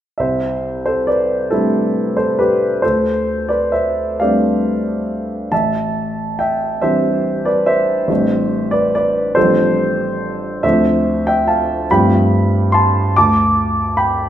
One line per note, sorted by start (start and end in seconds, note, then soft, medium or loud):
0.18 1.48 C2 soft
0.18 0.82 C5 soft
0.18 0.84 E5 medium
0.86 1.06 A4 soft
0.86 1.07 C5 medium
1.07 1.49 B4 soft
1.07 1.51 D5 medium
1.51 2.79 G3 soft
1.51 2.79 A3 soft
1.51 2.79 C4 soft
1.51 2.79 D4 soft
1.51 2.13 E4 soft
1.51 2.15 A4 medium
2.17 2.37 A4 soft
2.17 2.38 C5 medium
2.39 2.80 G4 soft
2.39 2.82 B4 medium
2.82 4.17 D2 soft
2.82 3.47 A4 soft
2.82 3.50 C5 medium
3.49 3.72 B4 soft
3.49 3.73 D5 medium
3.72 4.16 C5 soft
3.72 4.19 E5 medium
4.20 5.48 G3 soft
4.20 5.48 A3 soft
4.20 5.48 C4 soft
4.20 5.49 D4 soft
4.20 5.48 D5 soft
4.20 5.51 F5 medium
5.52 6.78 A1 soft
5.52 6.36 E5 soft
5.52 6.39 A5 medium
6.39 6.79 E5 soft
6.39 6.82 G5 medium
6.81 8.06 E3 soft
6.81 8.07 G3 soft
6.81 8.07 C4 soft
6.81 8.06 D4 soft
6.81 7.42 C5 soft
6.81 7.46 E5 medium
7.45 7.66 B4 soft
7.45 7.67 D5 medium
7.66 8.68 C5 soft
7.66 8.72 E5 medium
8.08 9.31 A1 soft
8.08 9.31 E3 soft
8.08 9.32 G3 soft
8.08 9.32 C4 soft
8.08 9.32 D4 soft
8.71 8.92 B4 soft
8.71 8.93 D5 medium
8.95 9.34 B4 soft
8.95 9.37 D5 medium
9.35 10.60 A1 soft
9.35 10.60 F3 soft
9.35 10.60 G3 soft
9.35 10.61 C4 soft
9.35 10.59 A4 soft
9.35 10.63 C5 medium
9.39 10.61 D4 soft
10.63 11.85 D2 soft
10.63 11.85 F3 soft
10.63 11.85 A3 soft
10.63 11.86 C4 soft
10.63 11.86 D4 soft
10.63 11.23 C5 soft
10.63 11.26 E5 medium
11.27 11.47 E5 medium
11.27 11.47 G5 medium
11.48 11.87 F5 soft
11.48 11.89 A5 medium
11.91 13.13 G2 soft
11.91 13.13 F3 soft
11.91 13.13 A3 soft
11.91 13.13 C4 soft
11.91 13.13 D4 soft
11.91 12.70 G5 medium
11.91 12.74 B5 medium
12.72 13.13 A5 medium
12.72 13.15 C6 medium
13.16 14.29 D2 soft
13.16 13.96 A5 medium
13.16 13.99 D6 medium
13.97 14.29 G5 medium
13.97 14.29 B5 medium